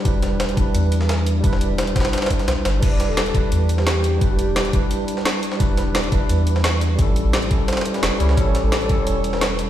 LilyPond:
<<
  \new Staff \with { instrumentName = "Soft synth lead" } { \time 4/4 \key e \dorian \tempo 4 = 173 r1 | r1 | r16 d''8 a'4 r4 g'4~ g'16~ | g'16 g'4. r2 r16 |
r1 | r1 | r16 cis''8 a'4 cis''8 r8 b'8 r8. | }
  \new Staff \with { instrumentName = "Tine electric piano" } { \time 4/4 \key e \dorian <g d' e' b'>4. <g d' e' b'>2~ <g d' e' b'>8 | <g d' e' b'>4. <g d' e' b'>2~ <g d' e' b'>8 | <g d' e' b'>4. <g d' e' b'>2~ <g d' e' b'>8 | <g d' e' b'>4. <g d' e' b'>2~ <g d' e' b'>8 |
<g d' e' b'>4. <g d' e' b'>2~ <g d' e' b'>8 | <g cis' e' a'>4. <g cis' e' a'>4~ <g cis' e' a'>16 <g cis' e' b'>16 r8 <g cis' e' cis''>16 r16 | <g cis' e' a'>4. <g cis' e' a'>2~ <g cis' e' a'>8 | }
  \new Staff \with { instrumentName = "Sub bass" } { \clef bass \time 4/4 \key e \dorian e,,8. e,,8. e,,16 r16 e,2 | e,,8. e,,8. e,,16 r4 r16 b,,16 r16 g,,8 | e,,8. e,,8. e,,16 r16 e,2 | e,,8. e,,8. e,,16 r2 r16 |
e,,8. e,,8. e,,16 r16 e,2 | a,,8. a,,8. a,,16 r4 r16 e,,16 r16 cis,8 | a,,8. a,,8. a,,16 r16 e,,2 | }
  \new DrumStaff \with { instrumentName = "Drums" } \drummode { \time 4/4 <hh bd>8 <hh sn>8 <hh sn>16 hh16 <hh bd>8 hh8 hh16 sn16 <hh sn>8 hh8 | <hh bd>16 sn16 hh8 <hh sn>16 hh16 <hh bd sn>32 <hh sn>32 <hh sn>16 <hh sn>32 <hh sn>32 <hh sn>32 <hh sn>32 <hh bd>16 <hh sn>16 <hh sn>8 <hh sn>8 | <cymc hh bd>8 <hh sn>8 <hh sn>16 hh16 <hh bd>8 hh8 hh16 sn16 <hh sn>8 hh8 | <hh bd>8 hh8 <hh sn>16 hh16 <hh bd>8 hh8 hh16 sn16 <hh sn>8 hh16 sn16 |
<hh bd>8 <hh sn>8 <hh sn>16 hh16 <hh bd>8 hh8 hh16 sn16 <hh sn>8 hh8 | <hh bd>8 hh8 <hh sn>16 hh16 <hh bd>8 <hh sn>32 <hh sn>32 <hh sn>32 <hh sn>32 hh16 <hh sn>16 <hh sn>8 hh16 sn16 | <hh bd>8 <hh sn>8 <hh sn>16 hh16 <hh bd>8 hh8 hh16 sn16 <hh sn>8 hh8 | }
>>